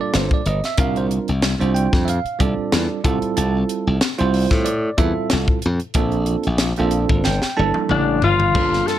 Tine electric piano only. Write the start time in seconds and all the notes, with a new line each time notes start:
Already playing: G3 A#3 D4 F4 A4
0.01 D5
0.15 C5
0.34 D5
0.47 D#5
0.65 E5
0.77 G3 C4 D4 F4 A#4 F5
0.97 C5
1.59 G3 C4 D4 F4 C5
1.75 G5
2.05 E5
2.09 F5
2.39 G3 C4 D4 F4 A4 D5
3.04 G3 C4 E4 F4 A4
3.37 A5
4.18 G3 C4 E4 F4 C5
4.65 D5
4.97 G3 C4 E4 F4 A4 E5
5.96 A#3 C4 D4 F4 A4
6.78 A#3 C4 D4 F4 A4
7.25 G5
7.57 G3 A#3 D4 E4 A4 A5
8.54 G3 A#3 D4 F4 A4